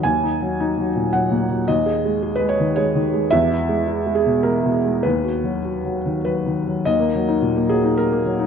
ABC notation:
X:1
M:3/4
L:1/16
Q:1/4=108
K:D#phr
V:1 name="Felt piano"
g8 f4 | d4- d B c2 c4 | e6 G2 A4 | B8 B4 |
d6 G2 A4 |]
V:2 name="Felt piano" clef=bass
(3D,,2 D2 F,2 (3D2 F,2 A,,2 (3F,2 A,,2 F,2 | (3D,,2 G2 G,2 (3G2 G,2 D,2 (3G,2 D,2 G,2 | (3E,,2 E2 G,2 (3E2 G,2 B,,2 (3G,2 B,,2 G,2 | (3D,,2 F2 F,2 (3F2 F,2 D,2 (3F,2 D,2 F,2 |
D,, A, F, D A,, A, F, D2 A, F, D |]